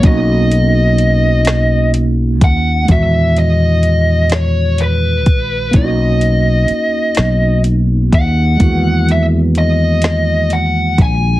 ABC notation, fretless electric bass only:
X:1
M:6/8
L:1/8
Q:3/8=42
K:Elyd
V:1 name="Fretless electric bass" clef=bass
B,,,4- B,,, D,, | E,,4- E,, A,,, | B,,,2 z B,,,2 D,, | E,,4- E,, A,,, |]